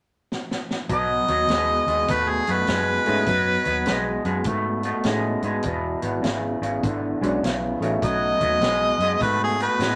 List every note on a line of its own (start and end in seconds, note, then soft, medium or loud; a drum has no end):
0.32 snare medium
0.51 snare medium
0.71 snare medium
0.89 1.19 B1 medium
0.89 1.24 B2 medium
0.89 1.24 F#3 medium
0.89 kick medium
0.89 closed hi-hat medium
0.94 2.13 D#5 medium
1.28 1.44 D#2 medium
1.28 1.47 B2 medium
1.28 1.47 F#3 medium
1.28 closed hi-hat medium
1.48 1.78 D#2 medium
1.48 1.84 B2 medium
1.48 1.84 G#3 medium
1.48 snare medium
1.48 closed hi-hat medium
1.87 2.03 D#2 medium
1.87 2.06 B2 medium
1.87 2.06 G#3 medium
1.87 closed hi-hat medium
2.08 2.38 D#2 medium
2.08 2.43 B2 medium
2.08 2.43 A3 medium
2.08 2.31 B4 medium
2.08 kick medium
2.08 snare soft
2.08 closed hi-hat medium
2.29 2.53 G#4 medium
2.47 2.63 F#2 medium
2.47 2.66 B2 medium
2.47 2.66 A3 medium
2.47 closed hi-hat medium
2.52 4.24 B4 medium
2.67 2.98 F#2 medium
2.67 3.02 B2 medium
2.67 3.02 G#3 medium
2.67 snare loud
2.67 closed hi-hat medium
3.05 3.23 G#2 medium
3.05 3.25 B2 medium
3.05 3.25 G#3 medium
3.05 3.24 A3 medium
3.05 3.24 C#4 medium
3.05 3.25 D#4 medium
3.05 3.25 G#4 medium
3.05 closed hi-hat medium
3.26 3.57 F#2 medium
3.26 3.62 B2 medium
3.26 3.62 F#3 medium
3.26 kick medium
3.26 closed hi-hat medium
3.65 3.82 D#2 medium
3.65 3.84 B2 medium
3.65 3.84 F#3 medium
3.65 closed hi-hat medium
3.86 4.16 B1 medium
3.86 4.21 B2 medium
3.86 4.21 G#3 medium
3.86 snare loud
3.86 closed hi-hat medium
4.25 4.41 F#2 medium
4.25 4.44 B2 medium
4.25 4.44 G#3 medium
4.25 closed hi-hat soft
4.44 4.92 G#2 medium
4.44 4.80 B2 medium
4.44 4.81 A3 medium
4.44 kick medium
4.44 closed hi-hat medium
4.83 5.03 B2 medium
4.83 5.03 A3 medium
4.83 closed hi-hat medium
5.03 5.35 A2 medium
5.03 5.40 B2 medium
5.03 5.40 G#3 medium
5.03 5.40 A3 medium
5.03 5.40 C#4 soft
5.03 5.40 D#4 medium
5.03 5.40 G#4 medium
5.03 snare loud
5.03 closed hi-hat medium
5.42 5.59 G#2 medium
5.42 5.62 B2 medium
5.42 5.62 G#3 medium
5.42 closed hi-hat medium
5.62 5.94 E1 medium
5.62 5.99 E2 medium
5.62 5.99 B2 medium
5.62 kick medium
5.62 closed hi-hat medium
6.02 6.19 G#1 medium
6.02 6.21 E2 medium
6.02 6.21 B2 medium
6.02 closed hi-hat medium
6.22 6.54 G#1 medium
6.22 6.57 E2 medium
6.22 6.58 C#3 medium
6.22 snare medium
6.22 closed hi-hat medium
6.61 6.78 G#1 medium
6.61 6.81 E2 medium
6.61 6.81 C#3 medium
6.61 closed hi-hat medium
6.83 7.13 G#1 medium
6.83 7.18 E2 medium
6.83 7.18 D3 medium
6.83 kick loud
6.83 closed hi-hat medium
7.21 7.37 B1 medium
7.21 7.40 E2 medium
7.21 7.40 D3 medium
7.21 7.40 G#3 medium
7.21 7.40 C#4 medium
7.21 7.41 D4 medium
7.21 7.41 F#4 medium
7.21 closed hi-hat medium
7.42 7.72 B1 medium
7.42 7.78 E2 medium
7.42 7.78 C#3 medium
7.42 snare loud
7.42 closed hi-hat medium
7.80 7.97 A1 medium
7.80 8.00 E2 medium
7.80 8.00 C#3 medium
7.80 8.57 A3 medium
7.80 8.57 C#4 medium
7.80 8.57 D#4 medium
7.80 8.57 F#4 medium
7.80 closed hi-hat soft
8.02 8.32 B1 medium
8.02 8.37 B2 medium
8.02 8.37 F#3 medium
8.02 9.18 D#5 medium
8.02 kick loud
8.02 closed hi-hat medium
8.41 8.57 D#2 medium
8.41 8.59 B2 medium
8.41 8.60 F#3 medium
8.41 kick medium
8.41 closed hi-hat medium
8.61 8.91 B1 medium
8.61 8.96 B2 medium
8.61 8.96 G#3 medium
8.61 snare medium
8.61 closed hi-hat medium
8.98 9.15 F#2 medium
8.98 9.19 B2 medium
8.98 9.19 G#3 medium
8.98 closed hi-hat medium
9.20 9.67 G#2 medium
9.20 9.55 B2 medium
9.20 9.55 A3 medium
9.20 9.41 B4 medium
9.20 kick loud
9.20 snare soft
9.20 closed hi-hat medium
9.44 9.61 G#4 medium
9.60 9.78 B2 medium
9.60 9.79 A3 medium
9.60 9.95 B4 medium
9.60 closed hi-hat medium
9.79 9.95 A2 medium
9.79 9.95 B2 medium
9.79 9.95 G#3 medium
9.79 snare loud
9.79 closed hi-hat medium